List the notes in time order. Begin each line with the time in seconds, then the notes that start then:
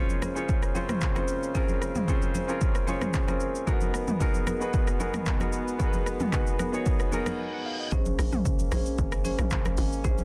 Already playing: C#3 G#3 A#3 C4 C#4 F4 G#4 A#4 C5 C#5
0.09 high conga, shaker
0.22 C#4 G#4 C5, cross-stick, high conga, shaker
0.35 C#4 F4 G#4 C5 C#5, shaker
0.49 kick, shaker
0.62 cross-stick, shaker
0.74 C4 C#4 F4 G#4 C5, high conga, shaker
0.89 cross-stick, mid tom, high conga, shaker
1.01 kick, clap, low conga, shaker
1.15 C4 C#4 F4 G#4 C5, cross-stick, high conga, shaker
1.28 shaker
1.43 shaker
1.54 C4 C#4 F4 G#4 A#4 C5, kick, low conga, shaker
1.68 high conga, shaker
1.82 cross-stick, shaker
1.95 mid tom, high conga, shaker
2.07 C4 C#4 F4 G#4 C5, kick, low conga, shaker
2.22 high conga, shaker
2.34 C#4 G#4 C5, high conga, shaker
2.48 C4 C#4 F4 G#4 A#4, shaker
2.61 kick, shaker
2.75 cross-stick, shaker
2.87 C#4 F4 G#4 C5 C#5, high conga, shaker
3.01 cross-stick, mid tom, high conga, shaker
3.13 kick, clap, low conga, shaker
3.27 C4 C#4 F4 G#4 A#4 C5, cross-stick, high conga, shaker
3.40 shaker
3.55 shaker
3.66 G#3 A#3 B3 D#4 F#4 G#4 A#4, kick, low conga, shaker
3.73 B3
3.81 high conga, shaker
3.94 cross-stick, shaker
4.08 mid tom, high conga, shaker
4.20 B3 D#4 F#4 G#4 A#4, kick, low conga, shaker
4.34 high conga, shaker
4.47 B3 F#4 A#4, cross-stick, high conga, shaker
4.60 B3 D#4 F#4 G#4 B4, shaker
4.74 kick, shaker
4.87 cross-stick, shaker
4.99 B3 D#4 F#4 G#4 A#4, high conga, shaker
5.14 cross-stick, mid tom, high conga, shaker
5.26 kick, clap, low conga, shaker
5.39 B3 D#4 F#4 G#4 A#4, cross-stick, high conga, shaker
5.53 shaker
5.68 shaker
5.79 B3 D#4 F#4 G#4 A#4, kick, low conga, shaker
5.87 B4
5.93 high conga, shaker
6.06 cross-stick, shaker
6.20 mid tom, high conga, shaker
6.32 B3 D#4 F#4 G#4 B4, kick, clap, low conga, shaker
6.47 shaker
6.59 B3 F#4 A#4, cross-stick, high conga, shaker
6.72 B3 D#4 F#4 G#4 C#5, shaker
6.86 kick, reverse cymbal, shaker
7.00 cross-stick, shaker
7.12 B3 D#4 F#4 G#4 A#4, high conga, shaker
7.26 cross-stick, high conga, shaker
7.39 D#5
7.53 F#5
7.66 F5
7.80 D#5
7.92 A#1 G#3 A#3 C#4 G#4 C5, kick, low conga, shaker
8.06 high conga, shaker
8.19 A#1, cross-stick, open hi-hat, shaker
8.32 mid tom, high conga, shaker
8.45 kick, low conga, shaker
8.59 high conga, shaker
8.71 A#1 C#4 G#4 C5, cross-stick, open hi-hat, high conga, shaker
8.86 shaker
8.98 G#1, kick, low conga, shaker
9.12 cross-stick, shaker
9.24 C#4 G#4 C5, open hi-hat, high conga, shaker
9.38 A#1, cross-stick, mid tom, high conga, shaker
9.51 kick, clap, low conga, shaker
9.65 cross-stick, high conga, shaker
9.77 G#1, open hi-hat, shaker
9.93 shaker
10.04 A#1 C#4 G#4 C5, kick, low conga, shaker
10.18 high conga, shaker